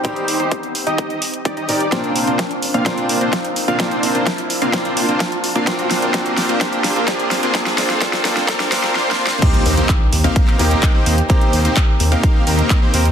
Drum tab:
CC |------------------------------------------------|------------------------------------------------|------------------------------------------------|------------------------------------------------|
HH |x--x--o--x--x--x--o--x--x--x--o--x--x--x--o--x--|x--x--o--x--x--x--o--x--x--x--o--x--x--x--o--x--|x--x--o--x--x--x--o--x--x--x--o--x--x--x--o--x--|x--x--o--x--x--x--o--x--x--x--o--x--x--x--o--x--|
CP |------------------------------------------------|------------------------------------------------|------------------------------------------------|------------------------------------------------|
SD |------------------------------------------------|o-----------o-----------o-----------o-----------|o-----------o-----------o-----------o-----------|o-----o-----o-----o-----o-----o-----o-----o-----|
BD |o-----------o-----------o-----------o-----------|o-----------o-----------o-----------o-----------|o-----------o-----------o-----------o-----------|o-----------o-----------o-----------o-----------|

CC |------------------------------------------------|x-----------------------------------------------|------------------------------------------------|
HH |x--x--o--x--x--x--o--x--x--x--o--x--------------|x--x--o--x--x-----o--x--x-----o--x--x-----o--x--|x--x--o--x--x-----o--x--x-----o--x--x-----o--x--|
CP |------------------------------------------------|------------x--------------x--------x-----------|------------x-----------------------x-----------|
SD |o--o--o--o--o--o--o--o--o--o--o--o--o---o---o---|------------------------------------------------|------------------------------------------------|
BD |o-----------o-----------o-----------------------|o-----------o-----------o-----------o-----------|o-----------o-----------o-----------o-----------|